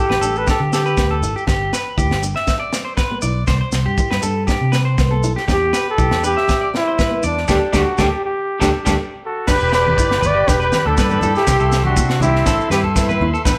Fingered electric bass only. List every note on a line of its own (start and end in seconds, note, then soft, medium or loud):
0.10 0.21 A1 medium
0.21 0.45 A1 medium
0.60 0.94 D3 medium
0.98 1.22 D2 medium
1.21 1.33 G#1 medium
1.48 1.70 G1 medium
1.98 2.10 D2 medium
2.10 2.33 G1 medium
3.23 3.46 B1 medium
3.48 3.60 C2 medium
3.72 3.84 C2 medium
3.86 3.97 G2 medium
4.12 4.23 G2 medium
4.23 4.46 G2 medium
4.61 4.95 C3 medium
4.99 5.21 C2 medium
5.21 5.34 B1 medium
5.48 5.71 E2 medium
5.99 6.10 B1 medium
6.12 6.35 E2 medium
7.24 7.47 E2 medium
7.49 7.58 D2 medium
7.74 7.83 D2 medium
7.99 8.08 D2 medium
8.62 8.70 D2 medium
8.87 8.95 D2 medium
9.48 9.60 G1 medium
9.61 9.95 E1 medium
9.98 10.21 G1 medium
10.22 10.45 G1 medium
10.48 10.71 E1 medium
10.86 10.97 D2 medium
10.98 11.21 G2 loud
11.23 11.34 G2 loud
11.47 11.59 C2 loud
11.59 11.99 C2 medium
11.97 12.20 C3 medium
12.21 12.44 C2 medium
12.47 12.59 A1 medium
12.70 13.16 G2 medium
13.20 13.32 D#2 medium
13.46 13.57 E2 loud